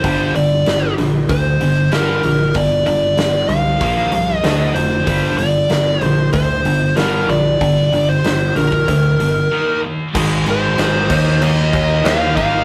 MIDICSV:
0, 0, Header, 1, 5, 480
1, 0, Start_track
1, 0, Tempo, 632244
1, 30, Time_signature, 4, 2, 24, 8
1, 9598, End_track
2, 0, Start_track
2, 0, Title_t, "Lead electric guitar"
2, 0, Program_c, 0, 29
2, 0, Note_on_c, 0, 72, 87
2, 266, Note_off_c, 0, 72, 0
2, 269, Note_on_c, 0, 74, 83
2, 714, Note_off_c, 0, 74, 0
2, 980, Note_on_c, 0, 72, 90
2, 1459, Note_on_c, 0, 70, 87
2, 1473, Note_off_c, 0, 72, 0
2, 1943, Note_on_c, 0, 74, 100
2, 1951, Note_off_c, 0, 70, 0
2, 2169, Note_off_c, 0, 74, 0
2, 2178, Note_on_c, 0, 74, 94
2, 2640, Note_on_c, 0, 77, 102
2, 2670, Note_off_c, 0, 74, 0
2, 3315, Note_off_c, 0, 77, 0
2, 3315, Note_on_c, 0, 75, 102
2, 3601, Note_on_c, 0, 72, 97
2, 3634, Note_off_c, 0, 75, 0
2, 4081, Note_off_c, 0, 72, 0
2, 4084, Note_on_c, 0, 74, 96
2, 4577, Note_off_c, 0, 74, 0
2, 4577, Note_on_c, 0, 72, 96
2, 4778, Note_off_c, 0, 72, 0
2, 4805, Note_on_c, 0, 72, 91
2, 5288, Note_off_c, 0, 72, 0
2, 5291, Note_on_c, 0, 70, 88
2, 5536, Note_on_c, 0, 74, 86
2, 5541, Note_off_c, 0, 70, 0
2, 6140, Note_on_c, 0, 72, 80
2, 6156, Note_off_c, 0, 74, 0
2, 6499, Note_off_c, 0, 72, 0
2, 6502, Note_on_c, 0, 70, 76
2, 7434, Note_off_c, 0, 70, 0
2, 7973, Note_on_c, 0, 72, 84
2, 8673, Note_on_c, 0, 75, 100
2, 8702, Note_off_c, 0, 72, 0
2, 9154, Note_off_c, 0, 75, 0
2, 9157, Note_on_c, 0, 77, 107
2, 9378, Note_off_c, 0, 77, 0
2, 9387, Note_on_c, 0, 77, 94
2, 9598, Note_off_c, 0, 77, 0
2, 9598, End_track
3, 0, Start_track
3, 0, Title_t, "Distorted electric guitar"
3, 0, Program_c, 1, 30
3, 23, Note_on_c, 1, 43, 81
3, 27, Note_on_c, 1, 50, 90
3, 32, Note_on_c, 1, 55, 90
3, 250, Note_off_c, 1, 43, 0
3, 252, Note_off_c, 1, 50, 0
3, 255, Note_off_c, 1, 55, 0
3, 263, Note_on_c, 1, 43, 61
3, 267, Note_on_c, 1, 50, 73
3, 480, Note_off_c, 1, 43, 0
3, 482, Note_off_c, 1, 50, 0
3, 505, Note_on_c, 1, 43, 70
3, 506, Note_on_c, 1, 50, 73
3, 720, Note_off_c, 1, 43, 0
3, 721, Note_off_c, 1, 50, 0
3, 744, Note_on_c, 1, 43, 70
3, 745, Note_on_c, 1, 50, 69
3, 959, Note_off_c, 1, 43, 0
3, 959, Note_off_c, 1, 50, 0
3, 980, Note_on_c, 1, 43, 65
3, 985, Note_on_c, 1, 50, 75
3, 1196, Note_off_c, 1, 43, 0
3, 1198, Note_off_c, 1, 50, 0
3, 1221, Note_on_c, 1, 43, 70
3, 1221, Note_on_c, 1, 50, 76
3, 1436, Note_off_c, 1, 43, 0
3, 1436, Note_off_c, 1, 50, 0
3, 1452, Note_on_c, 1, 43, 92
3, 1459, Note_on_c, 1, 50, 85
3, 1460, Note_on_c, 1, 55, 97
3, 1680, Note_off_c, 1, 43, 0
3, 1684, Note_off_c, 1, 50, 0
3, 1684, Note_off_c, 1, 55, 0
3, 1693, Note_on_c, 1, 43, 66
3, 1698, Note_on_c, 1, 50, 79
3, 1910, Note_off_c, 1, 43, 0
3, 1913, Note_off_c, 1, 50, 0
3, 1931, Note_on_c, 1, 43, 72
3, 1936, Note_on_c, 1, 50, 82
3, 2149, Note_off_c, 1, 43, 0
3, 2151, Note_off_c, 1, 50, 0
3, 2167, Note_on_c, 1, 43, 64
3, 2172, Note_on_c, 1, 50, 76
3, 2387, Note_off_c, 1, 43, 0
3, 2389, Note_off_c, 1, 50, 0
3, 2414, Note_on_c, 1, 43, 72
3, 2416, Note_on_c, 1, 50, 89
3, 2630, Note_off_c, 1, 43, 0
3, 2631, Note_off_c, 1, 50, 0
3, 2652, Note_on_c, 1, 43, 63
3, 2656, Note_on_c, 1, 50, 75
3, 2868, Note_off_c, 1, 43, 0
3, 2870, Note_off_c, 1, 50, 0
3, 2890, Note_on_c, 1, 46, 80
3, 2897, Note_on_c, 1, 53, 92
3, 2899, Note_on_c, 1, 58, 90
3, 3117, Note_off_c, 1, 46, 0
3, 3120, Note_off_c, 1, 53, 0
3, 3121, Note_off_c, 1, 58, 0
3, 3128, Note_on_c, 1, 46, 69
3, 3131, Note_on_c, 1, 53, 78
3, 3346, Note_off_c, 1, 46, 0
3, 3348, Note_off_c, 1, 53, 0
3, 3370, Note_on_c, 1, 50, 93
3, 3372, Note_on_c, 1, 57, 86
3, 3376, Note_on_c, 1, 62, 96
3, 3596, Note_off_c, 1, 50, 0
3, 3597, Note_off_c, 1, 57, 0
3, 3600, Note_off_c, 1, 62, 0
3, 3610, Note_on_c, 1, 50, 68
3, 3612, Note_on_c, 1, 57, 79
3, 3827, Note_off_c, 1, 50, 0
3, 3828, Note_off_c, 1, 57, 0
3, 3845, Note_on_c, 1, 43, 87
3, 3851, Note_on_c, 1, 50, 91
3, 3855, Note_on_c, 1, 55, 98
3, 4074, Note_off_c, 1, 43, 0
3, 4077, Note_off_c, 1, 50, 0
3, 4079, Note_off_c, 1, 55, 0
3, 4094, Note_on_c, 1, 43, 69
3, 4097, Note_on_c, 1, 50, 73
3, 4309, Note_off_c, 1, 43, 0
3, 4311, Note_off_c, 1, 50, 0
3, 4331, Note_on_c, 1, 43, 71
3, 4333, Note_on_c, 1, 50, 82
3, 4548, Note_off_c, 1, 43, 0
3, 4549, Note_off_c, 1, 50, 0
3, 4573, Note_on_c, 1, 43, 66
3, 4577, Note_on_c, 1, 50, 77
3, 4789, Note_off_c, 1, 43, 0
3, 4791, Note_off_c, 1, 50, 0
3, 4812, Note_on_c, 1, 43, 65
3, 4816, Note_on_c, 1, 50, 74
3, 5029, Note_off_c, 1, 43, 0
3, 5031, Note_off_c, 1, 50, 0
3, 5052, Note_on_c, 1, 43, 72
3, 5055, Note_on_c, 1, 50, 84
3, 5269, Note_off_c, 1, 43, 0
3, 5271, Note_off_c, 1, 50, 0
3, 5292, Note_on_c, 1, 43, 90
3, 5296, Note_on_c, 1, 50, 92
3, 5301, Note_on_c, 1, 55, 92
3, 5519, Note_off_c, 1, 43, 0
3, 5521, Note_off_c, 1, 50, 0
3, 5524, Note_off_c, 1, 55, 0
3, 5527, Note_on_c, 1, 43, 77
3, 5531, Note_on_c, 1, 50, 80
3, 5748, Note_off_c, 1, 43, 0
3, 5750, Note_off_c, 1, 50, 0
3, 5777, Note_on_c, 1, 43, 63
3, 5778, Note_on_c, 1, 50, 79
3, 5993, Note_off_c, 1, 43, 0
3, 5994, Note_off_c, 1, 50, 0
3, 6017, Note_on_c, 1, 43, 67
3, 6021, Note_on_c, 1, 50, 79
3, 6233, Note_off_c, 1, 43, 0
3, 6235, Note_off_c, 1, 50, 0
3, 6254, Note_on_c, 1, 43, 73
3, 6258, Note_on_c, 1, 50, 77
3, 6472, Note_off_c, 1, 43, 0
3, 6475, Note_off_c, 1, 50, 0
3, 6495, Note_on_c, 1, 43, 63
3, 6498, Note_on_c, 1, 50, 65
3, 6713, Note_off_c, 1, 43, 0
3, 6715, Note_off_c, 1, 50, 0
3, 6742, Note_on_c, 1, 43, 63
3, 6744, Note_on_c, 1, 50, 79
3, 6957, Note_off_c, 1, 43, 0
3, 6959, Note_off_c, 1, 50, 0
3, 6980, Note_on_c, 1, 43, 68
3, 6982, Note_on_c, 1, 50, 70
3, 7197, Note_off_c, 1, 43, 0
3, 7198, Note_off_c, 1, 50, 0
3, 7222, Note_on_c, 1, 51, 83
3, 7223, Note_on_c, 1, 58, 85
3, 7231, Note_on_c, 1, 63, 89
3, 7448, Note_off_c, 1, 51, 0
3, 7449, Note_off_c, 1, 58, 0
3, 7452, Note_off_c, 1, 63, 0
3, 7459, Note_on_c, 1, 51, 68
3, 7463, Note_on_c, 1, 58, 74
3, 7677, Note_off_c, 1, 51, 0
3, 7679, Note_off_c, 1, 58, 0
3, 7701, Note_on_c, 1, 44, 94
3, 7706, Note_on_c, 1, 51, 100
3, 7711, Note_on_c, 1, 56, 106
3, 8169, Note_off_c, 1, 44, 0
3, 8172, Note_off_c, 1, 51, 0
3, 8178, Note_off_c, 1, 56, 0
3, 8178, Note_on_c, 1, 44, 88
3, 8181, Note_on_c, 1, 51, 94
3, 8187, Note_on_c, 1, 56, 92
3, 8408, Note_off_c, 1, 44, 0
3, 8409, Note_off_c, 1, 51, 0
3, 8412, Note_off_c, 1, 56, 0
3, 8423, Note_on_c, 1, 51, 98
3, 8429, Note_on_c, 1, 58, 102
3, 8431, Note_on_c, 1, 63, 112
3, 8653, Note_off_c, 1, 51, 0
3, 8655, Note_off_c, 1, 58, 0
3, 8660, Note_off_c, 1, 63, 0
3, 8662, Note_on_c, 1, 51, 80
3, 8664, Note_on_c, 1, 58, 102
3, 8669, Note_on_c, 1, 63, 107
3, 9135, Note_off_c, 1, 51, 0
3, 9139, Note_off_c, 1, 58, 0
3, 9142, Note_off_c, 1, 63, 0
3, 9145, Note_on_c, 1, 51, 81
3, 9148, Note_on_c, 1, 58, 91
3, 9151, Note_on_c, 1, 63, 93
3, 9375, Note_off_c, 1, 51, 0
3, 9378, Note_off_c, 1, 58, 0
3, 9384, Note_off_c, 1, 63, 0
3, 9384, Note_on_c, 1, 51, 85
3, 9387, Note_on_c, 1, 58, 90
3, 9393, Note_on_c, 1, 63, 96
3, 9598, Note_off_c, 1, 51, 0
3, 9598, Note_off_c, 1, 58, 0
3, 9598, Note_off_c, 1, 63, 0
3, 9598, End_track
4, 0, Start_track
4, 0, Title_t, "Picked electric bass"
4, 0, Program_c, 2, 34
4, 29, Note_on_c, 2, 31, 99
4, 234, Note_off_c, 2, 31, 0
4, 270, Note_on_c, 2, 31, 81
4, 474, Note_off_c, 2, 31, 0
4, 512, Note_on_c, 2, 31, 93
4, 714, Note_off_c, 2, 31, 0
4, 747, Note_on_c, 2, 34, 82
4, 950, Note_off_c, 2, 34, 0
4, 982, Note_on_c, 2, 38, 80
4, 1187, Note_off_c, 2, 38, 0
4, 1224, Note_on_c, 2, 31, 80
4, 1428, Note_off_c, 2, 31, 0
4, 1464, Note_on_c, 2, 31, 84
4, 1667, Note_off_c, 2, 31, 0
4, 1702, Note_on_c, 2, 34, 81
4, 1905, Note_off_c, 2, 34, 0
4, 1936, Note_on_c, 2, 31, 97
4, 2141, Note_off_c, 2, 31, 0
4, 2175, Note_on_c, 2, 31, 88
4, 2380, Note_off_c, 2, 31, 0
4, 2408, Note_on_c, 2, 31, 89
4, 2616, Note_off_c, 2, 31, 0
4, 2647, Note_on_c, 2, 36, 88
4, 2855, Note_off_c, 2, 36, 0
4, 2891, Note_on_c, 2, 34, 87
4, 3097, Note_off_c, 2, 34, 0
4, 3129, Note_on_c, 2, 36, 82
4, 3336, Note_off_c, 2, 36, 0
4, 3368, Note_on_c, 2, 38, 93
4, 3575, Note_off_c, 2, 38, 0
4, 3606, Note_on_c, 2, 29, 85
4, 3814, Note_off_c, 2, 29, 0
4, 3848, Note_on_c, 2, 31, 94
4, 4056, Note_off_c, 2, 31, 0
4, 4088, Note_on_c, 2, 31, 84
4, 4296, Note_off_c, 2, 31, 0
4, 4329, Note_on_c, 2, 31, 86
4, 4536, Note_off_c, 2, 31, 0
4, 4566, Note_on_c, 2, 34, 85
4, 4775, Note_off_c, 2, 34, 0
4, 4810, Note_on_c, 2, 38, 86
4, 5017, Note_off_c, 2, 38, 0
4, 5050, Note_on_c, 2, 31, 89
4, 5258, Note_off_c, 2, 31, 0
4, 5291, Note_on_c, 2, 31, 92
4, 5499, Note_off_c, 2, 31, 0
4, 5529, Note_on_c, 2, 34, 86
4, 5738, Note_off_c, 2, 34, 0
4, 5776, Note_on_c, 2, 31, 100
4, 5982, Note_off_c, 2, 31, 0
4, 6017, Note_on_c, 2, 31, 91
4, 6223, Note_off_c, 2, 31, 0
4, 6259, Note_on_c, 2, 31, 90
4, 6465, Note_off_c, 2, 31, 0
4, 6499, Note_on_c, 2, 34, 84
4, 6705, Note_off_c, 2, 34, 0
4, 6741, Note_on_c, 2, 38, 85
4, 6947, Note_off_c, 2, 38, 0
4, 6982, Note_on_c, 2, 31, 83
4, 7188, Note_off_c, 2, 31, 0
4, 7703, Note_on_c, 2, 32, 94
4, 7931, Note_off_c, 2, 32, 0
4, 7944, Note_on_c, 2, 32, 87
4, 8172, Note_off_c, 2, 32, 0
4, 8184, Note_on_c, 2, 32, 94
4, 8412, Note_off_c, 2, 32, 0
4, 8426, Note_on_c, 2, 39, 86
4, 8654, Note_off_c, 2, 39, 0
4, 8663, Note_on_c, 2, 39, 85
4, 8892, Note_off_c, 2, 39, 0
4, 8907, Note_on_c, 2, 39, 94
4, 9135, Note_off_c, 2, 39, 0
4, 9141, Note_on_c, 2, 39, 89
4, 9372, Note_off_c, 2, 39, 0
4, 9388, Note_on_c, 2, 32, 85
4, 9598, Note_off_c, 2, 32, 0
4, 9598, End_track
5, 0, Start_track
5, 0, Title_t, "Drums"
5, 30, Note_on_c, 9, 36, 102
5, 30, Note_on_c, 9, 46, 65
5, 106, Note_off_c, 9, 36, 0
5, 106, Note_off_c, 9, 46, 0
5, 268, Note_on_c, 9, 46, 46
5, 344, Note_off_c, 9, 46, 0
5, 504, Note_on_c, 9, 46, 61
5, 513, Note_on_c, 9, 38, 101
5, 580, Note_off_c, 9, 46, 0
5, 589, Note_off_c, 9, 38, 0
5, 745, Note_on_c, 9, 46, 44
5, 754, Note_on_c, 9, 38, 31
5, 821, Note_off_c, 9, 46, 0
5, 830, Note_off_c, 9, 38, 0
5, 981, Note_on_c, 9, 46, 63
5, 983, Note_on_c, 9, 36, 109
5, 1057, Note_off_c, 9, 46, 0
5, 1059, Note_off_c, 9, 36, 0
5, 1220, Note_on_c, 9, 46, 45
5, 1296, Note_off_c, 9, 46, 0
5, 1456, Note_on_c, 9, 46, 62
5, 1465, Note_on_c, 9, 38, 105
5, 1532, Note_off_c, 9, 46, 0
5, 1541, Note_off_c, 9, 38, 0
5, 1696, Note_on_c, 9, 46, 49
5, 1772, Note_off_c, 9, 46, 0
5, 1931, Note_on_c, 9, 46, 64
5, 1935, Note_on_c, 9, 36, 112
5, 2007, Note_off_c, 9, 46, 0
5, 2011, Note_off_c, 9, 36, 0
5, 2174, Note_on_c, 9, 46, 49
5, 2250, Note_off_c, 9, 46, 0
5, 2411, Note_on_c, 9, 46, 65
5, 2420, Note_on_c, 9, 38, 108
5, 2487, Note_off_c, 9, 46, 0
5, 2496, Note_off_c, 9, 38, 0
5, 2650, Note_on_c, 9, 46, 49
5, 2726, Note_off_c, 9, 46, 0
5, 2891, Note_on_c, 9, 46, 69
5, 2892, Note_on_c, 9, 36, 113
5, 2967, Note_off_c, 9, 46, 0
5, 2968, Note_off_c, 9, 36, 0
5, 3127, Note_on_c, 9, 46, 53
5, 3203, Note_off_c, 9, 46, 0
5, 3370, Note_on_c, 9, 46, 66
5, 3379, Note_on_c, 9, 38, 112
5, 3446, Note_off_c, 9, 46, 0
5, 3455, Note_off_c, 9, 38, 0
5, 3611, Note_on_c, 9, 46, 55
5, 3687, Note_off_c, 9, 46, 0
5, 3849, Note_on_c, 9, 46, 69
5, 3850, Note_on_c, 9, 36, 110
5, 3925, Note_off_c, 9, 46, 0
5, 3926, Note_off_c, 9, 36, 0
5, 4089, Note_on_c, 9, 46, 51
5, 4165, Note_off_c, 9, 46, 0
5, 4325, Note_on_c, 9, 46, 62
5, 4334, Note_on_c, 9, 38, 95
5, 4401, Note_off_c, 9, 46, 0
5, 4410, Note_off_c, 9, 38, 0
5, 4565, Note_on_c, 9, 46, 51
5, 4641, Note_off_c, 9, 46, 0
5, 4805, Note_on_c, 9, 46, 65
5, 4810, Note_on_c, 9, 36, 114
5, 4881, Note_off_c, 9, 46, 0
5, 4886, Note_off_c, 9, 36, 0
5, 5050, Note_on_c, 9, 46, 50
5, 5126, Note_off_c, 9, 46, 0
5, 5289, Note_on_c, 9, 46, 62
5, 5298, Note_on_c, 9, 38, 102
5, 5365, Note_off_c, 9, 46, 0
5, 5374, Note_off_c, 9, 38, 0
5, 5538, Note_on_c, 9, 46, 44
5, 5614, Note_off_c, 9, 46, 0
5, 5778, Note_on_c, 9, 36, 104
5, 5778, Note_on_c, 9, 46, 66
5, 5854, Note_off_c, 9, 36, 0
5, 5854, Note_off_c, 9, 46, 0
5, 6019, Note_on_c, 9, 46, 44
5, 6095, Note_off_c, 9, 46, 0
5, 6260, Note_on_c, 9, 46, 58
5, 6269, Note_on_c, 9, 38, 98
5, 6336, Note_off_c, 9, 46, 0
5, 6345, Note_off_c, 9, 38, 0
5, 6500, Note_on_c, 9, 46, 50
5, 6576, Note_off_c, 9, 46, 0
5, 6622, Note_on_c, 9, 36, 73
5, 6698, Note_off_c, 9, 36, 0
5, 6743, Note_on_c, 9, 36, 91
5, 6745, Note_on_c, 9, 46, 68
5, 6819, Note_off_c, 9, 36, 0
5, 6821, Note_off_c, 9, 46, 0
5, 6985, Note_on_c, 9, 46, 53
5, 7061, Note_off_c, 9, 46, 0
5, 7705, Note_on_c, 9, 49, 116
5, 7705, Note_on_c, 9, 57, 86
5, 7706, Note_on_c, 9, 36, 112
5, 7781, Note_off_c, 9, 49, 0
5, 7781, Note_off_c, 9, 57, 0
5, 7782, Note_off_c, 9, 36, 0
5, 7944, Note_on_c, 9, 57, 58
5, 8020, Note_off_c, 9, 57, 0
5, 8186, Note_on_c, 9, 57, 82
5, 8195, Note_on_c, 9, 38, 105
5, 8262, Note_off_c, 9, 57, 0
5, 8271, Note_off_c, 9, 38, 0
5, 8426, Note_on_c, 9, 57, 108
5, 8427, Note_on_c, 9, 36, 110
5, 8502, Note_off_c, 9, 57, 0
5, 8503, Note_off_c, 9, 36, 0
5, 8668, Note_on_c, 9, 57, 81
5, 8744, Note_off_c, 9, 57, 0
5, 8907, Note_on_c, 9, 57, 63
5, 8908, Note_on_c, 9, 36, 92
5, 8983, Note_off_c, 9, 57, 0
5, 8984, Note_off_c, 9, 36, 0
5, 9149, Note_on_c, 9, 57, 81
5, 9158, Note_on_c, 9, 38, 115
5, 9225, Note_off_c, 9, 57, 0
5, 9234, Note_off_c, 9, 38, 0
5, 9391, Note_on_c, 9, 36, 83
5, 9393, Note_on_c, 9, 57, 63
5, 9467, Note_off_c, 9, 36, 0
5, 9469, Note_off_c, 9, 57, 0
5, 9598, End_track
0, 0, End_of_file